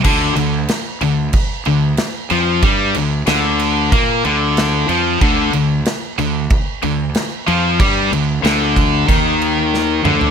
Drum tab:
CC |x-x-x-x-x-x-x-x-|x-x-x-x-x-x-x-x-|x-x-x-x-x-x-x-x-|x-x-x-x-x-x-----|
SD |----o-------o---|----o-------o---|----o-------o---|----o-------o---|
T2 |----------------|----------------|----------------|--------------o-|
FT |----------------|----------------|----------------|---------------o|
BD |o-------o-------|o-------o-------|o-------o-------|o-----o-o-------|